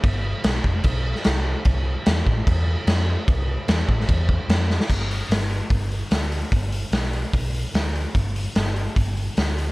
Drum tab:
CC |x---x---x---x---|x---x---x---x---|x---x---x---x---|x---------------|
HH |----------------|----------------|----------------|--o-o-o-o-o-o-o-|
SD |----o------oo---|----o-------o---|----o--o----o-oo|----oo------o---|
BD |o-----o-o-------|o-----o-o-------|o-----o-o-o-----|o-------o-------|

CC |----------------|----------------|
HH |o-o-o-o-o-o-o-o-|o-o-o-o-o-o-o-o-|
SD |----oo------o---|----oo------o---|
BD |o-------o-------|o-------o-------|